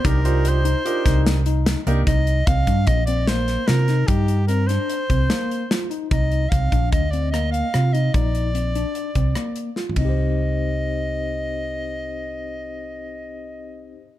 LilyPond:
<<
  \new Staff \with { instrumentName = "Soprano saxophone" } { \time 5/4 \key c \minor \tempo 4 = 148 bes'4 c''2 r2 | ees''4 f''4 ees''8 d''8 c''4 bes'4 | g'4 bes'8 c''2. r8 | ees''4 f''4 ees''8 d''8 ees''8 f''4 ees''8 |
d''1 r8 ees''8~ | ees''1~ ees''4~ | ees''1~ ees''4 | }
  \new Staff \with { instrumentName = "Grand piano" } { \time 5/4 \key c \minor <d' ees' g' bes'>8 <d' ees' g' c''>4 r8 <d' ees' g' bes'>4. r4 <d' ees' g' bes'>8 | r1 r4 | r1 r4 | r1 r4 |
r1 r4 | r1 r4 | r1 r4 | }
  \new Staff \with { instrumentName = "Tine electric piano" } { \time 5/4 \key c \minor ees'8 f'4 ees'8 f'8 ees'4 ees'4 bes8 | ees'4 c'8 d'4 c'8 bes4 f'8 ees'8 | ees'4 c'8 d'4 c'8 bes4 f'8 ees'8 | ees'4 c'8 d'4 c'8 bes4 f'8 ees'8 |
ees'4 c'8 d'4 c'8 bes4 f'8 <c' ees' g' c''>8~ | <c' ees' g' c''>1~ <c' ees' g' c''>4~ | <c' ees' g' c''>1~ <c' ees' g' c''>4 | }
  \new Staff \with { instrumentName = "Fingered electric bass" } { \clef bass \time 5/4 \key c \minor c,2 r8 c,2 c,8 | c,4 c,8 g,8 bes,,2 c4 | g,2 r8 c,8 r2 | c,4 c,8 bes,,8 d,2 c4 |
bes,,2 r8 c,8 r4. c,8~ | c,1~ c,4~ | c,1~ c,4 | }
  \new DrumStaff \with { instrumentName = "Drums" } \drummode { \time 5/4 <hh bd>8 hh8 hh8 hh8 hh8 <hh bd sn>8 <hh sn>8 hh8 <hh sn>8 hh8 | <hh bd>8 hh8 <hh bd>8 <hh bd>8 <hh bd>8 hh8 <hh sn>8 <hh sn>8 <hh sn>8 <hh sn>8 | <hh bd>8 hh8 hh8 <hh sn>8 hh8 <hh bd>8 <hh sn>8 hh8 <hh sn>8 hh8 | <hh bd>8 hh8 <hh bd>8 <hh bd>8 <hh bd>8 hh8 <hh ss>8 hh8 <hh ss>8 hh8 |
<hh bd>8 hh8 hh8 hh8 hh8 <hh bd>8 <hh ss>8 hh8 \tuplet 3/2 { sn16 r16 toml16 <bd cymr>16 r16 r16 } | r4 r4 r4 r4 r4 | r4 r4 r4 r4 r4 | }
>>